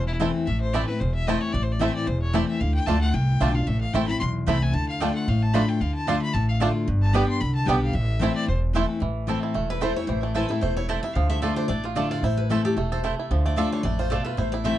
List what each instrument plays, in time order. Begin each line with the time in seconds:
Already playing: upright bass E1, steel-string acoustic guitar E2
0.07 fiddle E4
0.20 steel-string acoustic guitar E3 A3 C4 E4, mandolin A3 E4 C5 A5, five-string banjo A3 E4
0.46 upright bass A1, steel-string acoustic guitar A2, fiddle E5
0.61 fiddle C5
0.73 steel-string acoustic guitar E3 A3 C4 E4, mandolin A3 E4 C5 A5, five-string banjo A3 E4, fiddle D5
0.87 steel-string acoustic guitar C4 E4, fiddle B4
1.00 upright bass E1, steel-string acoustic guitar E2, fiddle C5
1.15 fiddle E5
1.27 steel-string acoustic guitar E3 A3 C4 E4, mandolin A3 E4 C5 A5, five-string banjo A3 E4, fiddle D#5
1.41 fiddle C#5
1.52 upright bass A1, steel-string acoustic guitar A2, fiddle D5
1.62 fiddle C5
1.72 fiddle D5
1.79 steel-string acoustic guitar E3 A3 C4 E4, mandolin A3 E4 C5 A5, five-string banjo A3 E4, fiddle E5
1.95 fiddle D5
2.07 upright bass E1, steel-string acoustic guitar E2, fiddle C5
2.22 fiddle C#5
2.33 steel-string acoustic guitar E3 A3 C4 E4, mandolin A3 E4 C5 A5, five-string banjo A3 E4, fiddle D5
2.48 fiddle E5
2.60 upright bass D2, steel-string acoustic guitar D3, fiddle F5
2.74 fiddle G5
2.86 upright bass D2, steel-string acoustic guitar D3 A3 D4 F4, mandolin A3 F4 D5 A5, five-string banjo A3 D4 F4, fiddle A5
3.01 fiddle F#5
3.13 upright bass C2, steel-string acoustic guitar A2, fiddle G5
3.40 upright bass B1, steel-string acoustic guitar D3 A3 D4 F4, mandolin A3 F4 D5 A5, five-string banjo A3 D4 F4
3.54 steel-string acoustic guitar D4 F4, fiddle F5
3.67 upright bass A1, steel-string acoustic guitar A2, fiddle E5
3.81 fiddle F5
3.93 upright bass A1, steel-string acoustic guitar E3 A3 C4 E4, mandolin A3 E4 C5 A5, five-string banjo A3 E4, fiddle G5
4.08 steel-string acoustic guitar C4 E4, fiddle B5
4.20 upright bass B1, steel-string acoustic guitar E2, fiddle C6
4.46 upright bass C2, steel-string acoustic guitar E3 A3 C4 E4, mandolin A3 E4 C5 A5, five-string banjo A3 E4, fiddle B5
4.63 fiddle G#5
4.73 upright bass D2, steel-string acoustic guitar D3, fiddle A5
4.89 fiddle F5
5.00 steel-string acoustic guitar D3 A3 D4 F4, mandolin A3 F4 D5 A5, five-string banjo A3 D4 F4, fiddle G5
5.15 fiddle F#5
5.28 upright bass A1, steel-string acoustic guitar A2, fiddle F5
5.42 fiddle A5
5.53 steel-string acoustic guitar D3 A3 D4 F4, mandolin A3 F4 D5 A5, five-string banjo A3 D4 F4, fiddle B5
5.69 fiddle G5
5.81 upright bass D2, steel-string acoustic guitar D3, fiddle F5
5.95 fiddle A5
6.07 steel-string acoustic guitar D3 A3 D4 F4, mandolin A3 F4 D5 A5, five-string banjo A3 D4 F4, fiddle C6
6.22 fiddle B5
6.34 upright bass A1, steel-string acoustic guitar A2, fiddle A5
6.49 fiddle F5
6.60 steel-string acoustic guitar D3 A3 D4 F4, mandolin A3 F4 D5 A5, five-string banjo A3 D4 F4
6.88 upright bass G1, steel-string acoustic guitar G2
7.02 fiddle A5
7.13 steel-string acoustic guitar G3 B3 D4 G4, mandolin B3 G4 D5 G5, five-string banjo B3 D4 G4, fiddle B5
7.28 fiddle C6
7.41 upright bass C2, steel-string acoustic guitar D3, fiddle B5
7.55 fiddle A5
7.65 upright bass B1, steel-string acoustic guitar G3 B3 D4 G4, mandolin B3 G4 D5, five-string banjo B3, fiddle G5
7.69 five-string banjo D4 G4, mandolin G5
7.83 fiddle F5
7.93 upright bass A1, steel-string acoustic guitar A2, fiddle E5
8.19 steel-string acoustic guitar E3 A3 C4 E4, mandolin A3 E4 C5 A5, five-string banjo A3 E4
8.36 fiddle D5
8.46 upright bass E1, steel-string acoustic guitar E2, fiddle C5
8.73 steel-string acoustic guitar E3 A3 C4 E4, mandolin A3 E4 C5 A5, five-string banjo A3 E4
9.00 upright bass A1, steel-string acoustic guitar A2, five-string banjo E3
9.27 steel-string acoustic guitar E3 A3 C4 E4, mandolin A3 E4 C5 A5, five-string banjo A4
9.43 five-string banjo E4
9.54 upright bass E1, steel-string acoustic guitar E2, five-string banjo A3
9.70 five-string banjo E4, steel-string acoustic guitar B4
9.81 steel-string acoustic guitar E3 A3 C4 E4 C5, mandolin A3 E4 C5 A5, five-string banjo A3
9.96 five-string banjo E4, steel-string acoustic guitar C#5
10.07 upright bass A1, steel-string acoustic guitar A2 C5, five-string banjo E3
10.23 five-string banjo A3, steel-string acoustic guitar D5
10.34 steel-string acoustic guitar E3 A3 C4 E4 B4, mandolin A3 E4 C5 A5, five-string banjo A4
10.49 steel-string acoustic guitar C4 E4 A4, five-string banjo E4
10.61 upright bass E1, steel-string acoustic guitar B2 C5, five-string banjo A3
10.77 five-string banjo E4, steel-string acoustic guitar C#5
10.89 steel-string acoustic guitar C3 D5, mandolin A3 E4 C5 A5, five-string banjo A3
11.03 five-string banjo E4, steel-string acoustic guitar E5
11.14 upright bass D2, steel-string acoustic guitar D3 F5, five-string banjo F3
11.30 five-string banjo A3, steel-string acoustic guitar E5
11.42 steel-string acoustic guitar D3 A3 D4 F4 D5, mandolin A3 F4 D5 A5, five-string banjo A4
11.56 five-string banjo D4, steel-string acoustic guitar C5
11.68 upright bass A1, steel-string acoustic guitar A2 D5, five-string banjo A3
11.84 steel-string acoustic guitar F4, five-string banjo F4
11.95 steel-string acoustic guitar D3 A3 D4 F4 A4, mandolin A3 F4 D5 A5, five-string banjo A3
12.11 five-string banjo F4, steel-string acoustic guitar D5
12.23 upright bass A1, steel-string acoustic guitar A2 C5, five-string banjo E4
12.37 steel-string acoustic guitar B4
12.50 steel-string acoustic guitar E3 A3 C4 E4 A4, five-string banjo A3, mandolin A3 E4 C5 A5
12.65 steel-string acoustic guitar G4, five-string banjo A4
12.77 upright bass E1, steel-string acoustic guitar B2 A4, five-string banjo A3
12.92 five-string banjo A4, steel-string acoustic guitar C5
13.03 steel-string acoustic guitar C3, mandolin A3 E4 C5 A5, five-string banjo A3
13.19 five-string banjo E4
13.31 upright bass D2, steel-string acoustic guitar D3, five-string banjo F3
13.46 five-string banjo A3, steel-string acoustic guitar D5
13.56 steel-string acoustic guitar D3 A3 D4 F4 E5, mandolin A3 F4 D5 A5, five-string banjo A4
13.72 five-string banjo D4, steel-string acoustic guitar C#5
13.83 upright bass A1, steel-string acoustic guitar F2 D5, five-string banjo A3
13.99 five-string banjo F4, steel-string acoustic guitar C5
14.10 steel-string acoustic guitar B2 A4, mandolin A3 F4 D5 A5, five-string banjo A3
14.25 five-string banjo F4, steel-string acoustic guitar B4
14.37 upright bass A1, steel-string acoustic guitar A2 C5, five-string banjo E4
14.52 five-string banjo E4, steel-string acoustic guitar D5
14.64 steel-string acoustic guitar E3 A3 C4 E4 E5, mandolin A3 E4 C5 A5, five-string banjo A3